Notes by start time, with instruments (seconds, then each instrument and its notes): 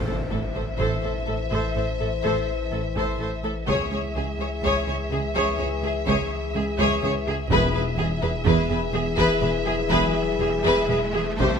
Already playing: sub bass A1, timpani A2, french horn section E3 C5, violin section E5, impact
0.07 cello section A2, viola section A4, violin section C5
0.31 double bass section A1, cello section A2, viola section A4, violin section A4
0.55 cello section A2, viola section A4, violin section C5
0.79 double bass section A1, cello section A2, viola section A4, violin section C5, taiko
1.03 cello section A2, viola section A4, violin section C5
1.27 double bass section A1, cello section A2, viola section A4, violin section A4
1.51 cello section A2, viola section A4, violin section C5, taiko
1.75 double bass section A1, cello section A2, viola section A4, violin section C5
2.00 cello section A2, viola section A4, violin section A4
2.23 double bass section A1, cello section A2, viola section A4, violin section C5, taiko
2.72 double bass section A1, cello section A2, viola section A4, violin section A4
2.96 cello section A2, viola section A4, violin section C5, taiko
3.20 double bass section A1, cello section A2, viola section A4, violin section C5
3.43 cello section A2, viola section A4, violin section A4
3.67 cello section C#2, double bass section C#2, sub bass C#2, french horn section E3 G#4, viola section G#4, violin section C#5 E5, taiko
3.91 cello section C#2, viola section G#4, violin section C#5
4.15 cello section C#2, double bass section C#2, violin section G#4, viola section G#4
4.39 cello section C#2, viola section G#4, violin section C#5
4.63 double bass section C#2, cello section C#2, viola section G#4, violin section C#5, taiko
4.87 cello section C#2, viola section G#4, violin section C#5
5.11 cello section C#2, double bass section C#2, viola section G#4, violin section G#4
5.35 cello section C#2, viola section G#4, violin section C#5, taiko
5.59 double bass section C#2, cello section C#2, viola section G#4, violin section C#5
5.83 cello section C#2, viola section G#4, violin section G#4
6.06 double bass section C#2, cello section C#2, viola section G#4, violin section C#5, taiko
6.54 double bass section C#2, cello section C#2, viola section G#4, violin section G#4
6.79 cello section C#2, viola section G#4, violin section C#5, taiko
7.02 double bass section C#2, cello section C#2, viola section G#4, violin section C#5
7.27 cello section C#2, viola section G#4, violin section G#4
7.50 double bass section E1, sub bass E1, timpani E2, cello section E2, french horn section E3 G#4, viola section G#4, violin section B4 E5, taiko, riser
7.74 cello section E2, viola section G#4, violin section B4
7.98 double bass section E1, cello section E2, viola section G#4, violin section G#4
8.22 cello section E2, viola section G#4, violin section B4
8.45 double bass section E1, cello section E2, viola section G#4, violin section B4, taiko
8.70 cello section E2, viola section G#4, violin section B4
8.93 double bass section E1, cello section E2, violin section G#4, viola section G#4
9.17 cello section E2, viola section G#4, violin section B4, taiko
9.42 double bass section E1, cello section E2, viola section G#4, violin section B4
9.66 cello section E2, violin section G#4, viola section G#4
9.90 double bass section E1, cello section E2, viola section G#4, violin section B4, taiko
10.40 double bass section E1, cello section E2, violin section G#4, viola section G#4
10.65 cello section E2, viola section G#4, violin section B4, taiko
10.89 double bass section E1, cello section E2, viola section G#4, violin section B4
11.14 cello section E2, violin section G#4, viola section G#4
11.39 double bass section C2, sub bass C2, cello section C2, french horn section E3 G4, viola section G4, violin section C5 E5, taiko